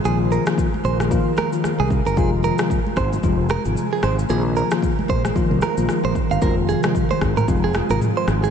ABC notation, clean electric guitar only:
X:1
M:4/4
L:1/16
Q:"Swing 16ths" 1/4=113
K:Fm
V:1 name="Clean electric guitar"
A z B z3 c z3 B z2 A z B | A z B z3 c z3 B z2 A c z | A z B z3 c z3 B z2 c z f | B z A z2 c z B z A z B z c z A |]